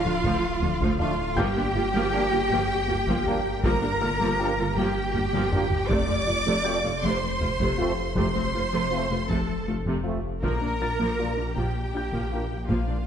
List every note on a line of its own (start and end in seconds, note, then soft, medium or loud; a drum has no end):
0.00 1.39 D1 medium
0.00 0.96 F4 loud
0.00 0.96 F5 medium
0.00 0.98 F5 medium
0.00 0.20 G5 soft
0.00 1.71 A#5 soft
0.00 1.71 A#6 medium
0.05 0.12 D2 medium
0.05 0.17 F3 medium
0.05 0.13 D4 medium
0.05 0.13 F4 soft
0.23 0.31 D2 medium
0.23 0.36 D3 medium
0.23 0.42 F3 medium
0.23 0.42 A3 medium
0.23 taiko medium
0.61 0.69 D2 medium
0.61 0.73 F3 medium
0.61 0.70 D4 medium
0.61 0.70 F4 soft
0.61 taiko low medium
0.80 0.88 D2 medium
0.80 0.92 D3 medium
0.80 0.99 F3 medium
0.80 0.99 A3 medium
0.80 taiko medium
0.99 1.13 F3 medium
0.99 1.13 A3 medium
0.99 1.12 D4 medium
0.99 1.12 F4 medium
0.99 1.37 F4 medium
0.99 1.36 F5 medium
0.99 1.37 F5 medium
0.99 taiko low medium
1.36 1.44 G1 medium
1.36 5.92 G1 medium
1.36 1.55 F3 medium
1.36 1.49 G3 medium
1.36 1.55 A#3 medium
1.36 3.64 G4 loud
1.36 3.59 G5 soft
1.36 3.64 G5 medium
1.36 3.64 G5 loud
1.36 3.59 G6 medium
1.36 taiko medium
1.56 1.64 G1 medium
1.56 1.64 G3 medium
1.56 1.68 A#3 medium
1.56 1.64 D4 medium
1.75 1.82 G1 medium
1.75 1.83 A#3 medium
1.75 1.86 F4 medium
1.75 1.83 F4 medium
1.94 2.01 G1 medium
1.94 2.12 F3 medium
1.94 2.05 G3 medium
1.94 2.12 A#3 medium
2.12 2.26 F3 medium
2.12 2.26 A#3 medium
2.12 2.25 D4 medium
2.12 2.26 G4 medium
2.31 2.39 G1 medium
2.31 2.43 A#3 medium
2.31 2.39 A#3 medium
2.31 2.39 F4 medium
2.50 2.58 G1 medium
2.50 2.68 F3 medium
2.50 2.61 G3 medium
2.50 2.68 A#3 medium
2.50 taiko medium
2.88 2.95 G1 medium
2.88 2.99 A#3 medium
2.88 2.96 A#3 medium
2.88 2.96 F4 medium
2.88 taiko low medium
3.07 3.15 G1 medium
3.07 3.25 F3 medium
3.07 3.18 G3 medium
3.07 3.25 A#3 medium
3.07 taiko medium
3.26 3.39 F3 medium
3.26 3.39 A#3 medium
3.26 3.39 D4 medium
3.26 3.39 G4 medium
3.26 taiko low medium
3.62 3.71 G1 medium
3.62 3.81 F3 medium
3.62 3.75 G3 loud
3.62 3.81 A#3 medium
3.62 4.75 A#4 medium
3.62 4.76 A#5 medium
3.62 4.74 A#5 loud
3.62 taiko loud
3.82 3.90 G1 medium
3.82 3.90 G3 medium
3.82 3.94 A#3 medium
3.82 3.90 D4 soft
4.01 4.09 G1 medium
4.01 4.09 A#3 medium
4.01 4.12 F4 medium
4.01 4.09 F4 medium
4.01 6.24 F6 medium
4.20 4.28 G1 medium
4.20 4.38 F3 medium
4.20 4.31 G3 medium
4.20 4.38 A#3 medium
4.39 4.53 F3 medium
4.39 4.53 A#3 medium
4.39 4.53 D4 medium
4.39 4.52 G4 medium
4.58 4.65 G1 medium
4.58 4.69 A#3 medium
4.58 4.66 A#3 soft
4.58 4.66 F4 medium
4.76 4.84 G1 medium
4.76 4.94 F3 medium
4.76 4.88 G3 medium
4.76 4.94 A#3 medium
4.76 5.88 G4 medium
4.76 5.87 G5 medium
4.76 5.90 G5 medium
4.76 taiko medium
5.14 5.22 G1 medium
5.14 5.26 A#3 medium
5.14 5.22 A#3 medium
5.14 5.22 F4 soft
5.14 taiko low medium
5.33 5.41 G1 medium
5.33 5.51 F3 medium
5.33 5.45 G3 medium
5.33 5.51 A#3 medium
5.33 taiko mid medium
5.51 5.66 F3 medium
5.51 5.66 A#3 medium
5.51 5.65 D4 medium
5.51 5.65 G4 medium
5.51 taiko low-mid medium
5.71 taiko low medium
5.89 5.97 F1 medium
5.89 10.45 F1 medium
5.89 6.07 C3 medium
5.89 6.01 F3 medium
5.89 6.07 A3 medium
5.89 7.03 D5 loud
5.89 7.00 D6 loud
5.89 7.03 D6 medium
5.89 taiko medium
6.08 6.16 F1 medium
6.08 6.16 F3 soft
6.08 6.20 A3 medium
6.08 6.15 C4 soft
6.27 6.35 F1 medium
6.27 6.35 A3 soft
6.27 6.39 F4 medium
6.27 6.35 F4 medium
6.46 6.54 F1 medium
6.46 6.64 C3 medium
6.46 6.57 F3 medium
6.46 6.64 A3 medium
6.65 6.78 F3 medium
6.65 6.78 A3 medium
6.65 6.78 C4 medium
6.65 6.78 F4 medium
6.65 8.87 G6 soft
6.84 6.92 F1 medium
6.84 6.91 A3 medium
6.84 6.96 A3 medium
6.84 6.91 F4 medium
7.03 7.11 F1 medium
7.03 7.21 C3 medium
7.03 7.14 F3 medium
7.03 7.21 A3 medium
7.03 8.15 C5 medium
7.03 8.16 C6 medium
7.03 8.15 C6 medium
7.03 taiko medium
7.41 7.49 F1 medium
7.41 7.48 A3 soft
7.41 7.52 A3 medium
7.41 7.48 F4 soft
7.41 taiko low medium
7.60 7.68 F1 medium
7.60 7.77 C3 medium
7.60 7.71 F3 medium
7.60 7.77 A3 medium
7.60 taiko medium
7.78 7.92 F3 medium
7.78 7.92 A3 medium
7.78 7.92 C4 medium
7.78 7.92 F4 medium
7.78 taiko low medium
8.16 8.24 F1 medium
8.16 8.34 C3 medium
8.16 8.28 F3 medium
8.16 8.34 A3 medium
8.16 9.27 C5 medium
8.16 9.27 C6 medium
8.16 9.28 C6 medium
8.16 taiko medium
8.35 8.44 F1 soft
8.35 8.43 F3 soft
8.35 8.47 A3 medium
8.35 8.43 C4 soft
8.54 8.62 F1 soft
8.54 8.62 A3 soft
8.54 8.61 F4 medium
8.54 8.66 F4 medium
8.72 8.80 F1 medium
8.72 8.90 C3 medium
8.72 8.84 F3 medium
8.72 8.90 A3 medium
8.91 9.05 F3 medium
8.91 9.06 A3 medium
8.91 9.04 C4 medium
8.91 9.04 F4 medium
9.10 9.19 F1 soft
9.10 9.18 A3 soft
9.10 9.22 A3 medium
9.10 9.18 F4 soft
9.29 9.37 F1 medium
9.29 9.47 C3 medium
9.29 9.41 F3 medium
9.29 9.47 A3 medium
9.29 9.66 A4 medium
9.29 9.67 A5 medium
9.29 taiko medium
9.67 9.75 F1 soft
9.67 9.75 A3 medium
9.67 9.79 A3 medium
9.67 9.75 F4 soft
9.86 9.94 F1 medium
9.86 10.04 C3 medium
9.86 9.98 F3 medium
9.86 10.04 A3 medium
9.86 taiko medium
10.04 10.18 F3 medium
10.04 10.18 A3 medium
10.04 10.17 C4 soft
10.04 10.17 F4 soft
10.42 10.50 A#1 medium
10.42 13.07 A#1 medium
10.42 10.60 F3 medium
10.42 10.54 A#3 medium
10.42 10.60 A#3 medium
10.42 11.52 A#4 medium
10.42 11.52 A#5 medium
10.42 taiko medium
10.61 10.70 A#1 soft
10.61 10.69 A#3 soft
10.61 10.73 D4 medium
10.61 10.69 D4 soft
10.80 10.88 A#1 soft
10.80 10.88 D4 soft
10.80 10.88 F4 soft
10.80 10.92 A#4 medium
10.80 13.04 A6 soft
10.99 11.07 A#1 medium
10.99 11.17 F3 medium
10.99 11.11 A#3 medium
10.99 11.17 A#3 medium
11.19 11.32 F3 soft
11.19 11.32 A#3 soft
11.19 11.33 D4 soft
11.19 11.32 F4 medium
11.37 11.44 A#1 soft
11.37 11.48 D4 soft
11.37 11.45 D4 soft
11.37 11.45 F4 soft
11.55 11.64 A#1 medium
11.55 11.73 F3 soft
11.55 11.73 A#3 soft
11.55 11.67 A#3 medium
11.55 12.69 G4 medium
11.55 12.69 G5 medium
11.55 12.67 G5 medium
11.55 taiko medium
11.93 12.01 A#1 soft
11.93 12.01 D4 soft
11.93 12.05 D4 medium
11.93 12.01 F4 soft
11.93 13.07 G6 soft
12.12 12.20 A#1 medium
12.12 12.30 F3 soft
12.12 12.30 A#3 medium
12.12 12.24 A#3 medium
12.12 taiko medium
12.32 12.45 F3 soft
12.32 12.46 A#3 soft
12.32 12.45 D4 soft
12.32 12.45 F4 soft
12.69 12.76 A#1 medium
12.69 12.87 F3 soft
12.69 12.87 A#3 soft
12.69 12.81 A#3 medium
12.69 13.07 F4 soft
12.69 13.07 F5 soft
12.69 taiko medium
12.87 12.95 A#1 soft
12.87 12.96 A#3 soft
12.87 12.96 D4 soft
12.87 13.00 D4 soft